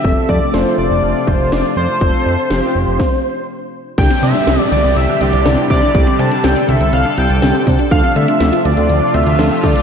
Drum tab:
CC |----------------|----------------|x---------------|----------------|
HH |----------------|----------------|x-xxx-xxx-xxx-ox|x-xxx-xxx-xxx-ox|
SD |----o-------o---|----o---o-------|----o-------o---|----o-------o---|
BD |o-o-------o-----|o-------o-------|o-------------o-|o-------------o-|

CC |----------------|
HH |x-xxx-xxx-xxx-ox|
SD |----o-------o---|
BD |o-------------o-|